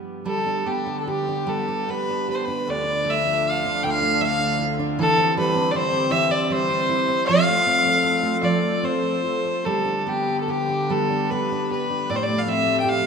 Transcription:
Already playing: steel-string acoustic guitar G2 G3 B3 D4, string section F3 B3 G4
0.26 string section D3 B3 G4, steel-string acoustic guitar G3, fiddle A4
0.46 steel-string acoustic guitar D4
0.66 steel-string acoustic guitar B3, fiddle G4
0.86 steel-string acoustic guitar D4
1.00 fiddle A4
1.07 steel-string acoustic guitar G4, fiddle G4
1.28 steel-string acoustic guitar D4
1.47 steel-string acoustic guitar G3, fiddle A4
1.69 steel-string acoustic guitar D4
1.89 steel-string acoustic guitar B3, fiddle B4
2.09 steel-string acoustic guitar D4
2.28 steel-string acoustic guitar G4, fiddle B4
2.35 fiddle C5
2.45 steel-string acoustic guitar D4, fiddle B4
2.67 steel-string acoustic guitar D2, string section D3 F3 D4, fiddle D5
2.85 steel-string acoustic guitar D4
3.05 steel-string acoustic guitar A3
3.10 fiddle E5
3.25 steel-string acoustic guitar D4
3.50 fiddle F5
3.65 steel-string acoustic guitar D4
3.83 steel-string acoustic guitar D2, fiddle G5
3.90 fiddle F5
4.02 steel-string acoustic guitar D4
4.21 steel-string acoustic guitar A3, fiddle E5 F5
4.40 steel-string acoustic guitar D4
4.59 steel-string acoustic guitar E4
4.79 steel-string acoustic guitar D4
4.99 steel-string acoustic guitar E3, string section C4 G4, fiddle A4
5.17 steel-string acoustic guitar C4
5.37 steel-string acoustic guitar G3, fiddle B4
5.55 steel-string acoustic guitar C4
5.71 steel-string acoustic guitar E4, fiddle D5
5.76 fiddle C5
5.92 steel-string acoustic guitar C4
6.11 steel-string acoustic guitar E3, fiddle E5
6.30 steel-string acoustic guitar C4, fiddle D5
6.44 fiddle D5
6.50 steel-string acoustic guitar G3, fiddle C5
6.70 steel-string acoustic guitar C4
6.89 steel-string acoustic guitar E4
7.08 steel-string acoustic guitar C4
7.27 string section F3 C4 A4, steel-string acoustic guitar F3, fiddle F5
7.48 steel-string acoustic guitar A3
7.66 steel-string acoustic guitar C4
7.86 steel-string acoustic guitar A3
8.04 steel-string acoustic guitar F4
8.23 steel-string acoustic guitar A3
8.43 steel-string acoustic guitar F3, fiddle D5
8.62 steel-string acoustic guitar A3
8.83 steel-string acoustic guitar C4, fiddle C5
9.03 steel-string acoustic guitar A3
9.24 steel-string acoustic guitar F4
9.45 steel-string acoustic guitar A3
9.63 string section D3 B3 G4, steel-string acoustic guitar G3, fiddle A4
9.85 steel-string acoustic guitar D4
10.00 fiddle A4
10.07 steel-string acoustic guitar B3, fiddle G4
10.28 steel-string acoustic guitar D4
10.41 fiddle A4
10.48 steel-string acoustic guitar G4, fiddle G4
10.69 steel-string acoustic guitar D4
10.90 steel-string acoustic guitar G3, fiddle A4
11.10 steel-string acoustic guitar D4
11.30 steel-string acoustic guitar B3, fiddle B4
11.52 steel-string acoustic guitar D4
11.71 steel-string acoustic guitar G4, fiddle B4
11.90 steel-string acoustic guitar D4
12.07 string section A2 F3 A3, steel-string acoustic guitar A2, fiddle D5
12.16 fiddle C5
12.23 fiddle D5
12.29 steel-string acoustic guitar A3
12.39 fiddle F5
12.47 steel-string acoustic guitar C4, fiddle E5
12.66 steel-string acoustic guitar A3
12.80 fiddle G5
12.84 steel-string acoustic guitar G4
12.89 fiddle F5
13.03 steel-string acoustic guitar A3

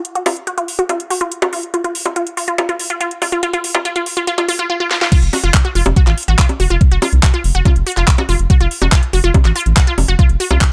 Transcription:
0.05 closed hi-hat
0.15 synth arpeggio sound F#4, closed hi-hat
0.26 synth arpeggio sound F4, open hi-hat, high bongo
0.37 closed hi-hat
0.47 synth arpeggio sound F#4, closed hi-hat
0.58 synth arpeggio sound F4, closed hi-hat
0.68 open hi-hat
0.79 synth arpeggio sound F#4, closed hi-hat
0.89 synth arpeggio sound F4, closed hi-hat, high bongo
1.00 closed hi-hat
1.10 synth arpeggio sound F#4, open hi-hat
1.21 synth arpeggio sound F4, closed hi-hat
1.32 closed hi-hat
1.42 synth arpeggio sound F#4, closed hi-hat, high bongo
1.53 synth arpeggio sound F4, open hi-hat
1.63 closed hi-hat
1.74 synth arpeggio sound F4, closed hi-hat
1.84 synth arpeggio sound F4, closed hi-hat
1.95 open hi-hat
2.06 synth arpeggio sound F4, closed hi-hat, high bongo
2.16 synth arpeggio sound F4, closed hi-hat
2.27 closed hi-hat
2.37 synth arpeggio sound F4, open hi-hat
2.48 synth arpeggio sound F4, closed hi-hat
2.58 synth arpeggio sound F4, closed hi-hat, high bongo
2.69 synth arpeggio sound F4, closed hi-hat
2.79 open hi-hat
2.90 synth arpeggio sound F4, closed hi-hat
3.01 synth arpeggio sound F4, closed hi-hat
3.11 closed hi-hat
3.22 synth arpeggio sound F4, open hi-hat, high bongo
3.32 synth arpeggio sound F4, closed hi-hat
3.43 synth arpeggio sound F4, closed hi-hat
3.53 synth arpeggio sound F4, closed hi-hat
3.64 open hi-hat
3.75 synth arpeggio sound F4, closed hi-hat, high bongo
3.85 synth arpeggio sound F4, closed hi-hat
3.96 synth arpeggio sound F4, closed hi-hat
4.06 open hi-hat
4.17 synth arpeggio sound F4, closed hi-hat
4.27 synth arpeggio sound F4, closed hi-hat
4.38 synth arpeggio sound F4, closed hi-hat, high bongo
4.48 synth arpeggio sound F4, open hi-hat
4.59 synth arpeggio sound F4, closed hi-hat
4.70 synth arpeggio sound F4
4.80 synth arpeggio sound F4
4.91 synth arpeggio sound F4, snare
5.01 synth arpeggio sound F4, snare
5.12 synth arpeggio sound F4, kick, closed hi-hat, crash
5.22 analog synth bass F1, closed hi-hat
5.33 synth arpeggio sound F#4, open hi-hat, high bongo
5.44 analog synth bass F1, synth arpeggio sound F4
5.54 kick, clap, closed hi-hat
5.65 synth arpeggio sound F#4, closed hi-hat
5.75 analog synth bass F1, synth arpeggio sound F4, open hi-hat
5.86 analog synth bass F1, closed hi-hat, high bongo
5.96 synth arpeggio sound F#4, kick, closed hi-hat
6.07 analog synth bass A1, synth arpeggio sound F4, clap, closed hi-hat
6.18 open hi-hat
6.23 closed hi-hat
6.28 analog synth bass A1, synth arpeggio sound F#4, closed hi-hat
6.39 synth arpeggio sound F4, kick, clap, closed hi-hat
6.49 closed hi-hat, high bongo
6.60 analog synth bass F1, synth arpeggio sound F#4, open hi-hat
6.70 analog synth bass F1, synth arpeggio sound F4, closed hi-hat
6.81 kick, closed hi-hat
6.91 analog synth bass F1, synth arpeggio sound F#4, closed hi-hat
7.02 synth arpeggio sound F4, open hi-hat, high bongo
7.13 analog synth bass C2, closed hi-hat
7.23 synth arpeggio sound F#4, kick, clap, closed hi-hat
7.34 synth arpeggio sound F4, closed hi-hat
7.44 analog synth bass F1, open hi-hat
7.55 analog synth bass F1, synth arpeggio sound F#4, closed hi-hat
7.65 synth arpeggio sound F4, kick, closed hi-hat, high bongo
7.76 analog synth bass F1, closed hi-hat
7.87 synth arpeggio sound F#4, open hi-hat
7.92 closed hi-hat
7.97 analog synth bass F1, synth arpeggio sound F4, clap, closed hi-hat
8.08 kick, clap, closed hi-hat
8.18 synth arpeggio sound F#4, closed hi-hat, high bongo
8.29 analog synth bass F1, synth arpeggio sound F4, open hi-hat
8.39 analog synth bass F1, closed hi-hat
8.50 synth arpeggio sound F#4, kick, closed hi-hat
8.60 analog synth bass F1, synth arpeggio sound F4, closed hi-hat
8.71 open hi-hat
8.82 analog synth bass F1, synth arpeggio sound F#4, closed hi-hat, high bongo
8.92 synth arpeggio sound F4, kick, clap, closed hi-hat
9.03 closed hi-hat
9.13 analog synth bass F1, synth arpeggio sound F#4, open hi-hat
9.24 analog synth bass F1, synth arpeggio sound F4, closed hi-hat
9.34 kick, closed hi-hat, high bongo
9.45 analog synth bass A1, synth arpeggio sound F#4, clap, closed hi-hat
9.56 synth arpeggio sound F4, open hi-hat
9.61 closed hi-hat
9.66 analog synth bass A1, closed hi-hat
9.77 synth arpeggio sound F#4, kick, clap, closed hi-hat
9.87 synth arpeggio sound F4, closed hi-hat
9.98 analog synth bass F1, open hi-hat, high bongo
10.08 analog synth bass F1, synth arpeggio sound F#4, closed hi-hat
10.19 synth arpeggio sound F4, kick, closed hi-hat
10.29 analog synth bass F1, closed hi-hat
10.40 synth arpeggio sound F#4, open hi-hat
10.51 analog synth bass C2, synth arpeggio sound F4, closed hi-hat, high bongo
10.61 kick, clap, closed hi-hat

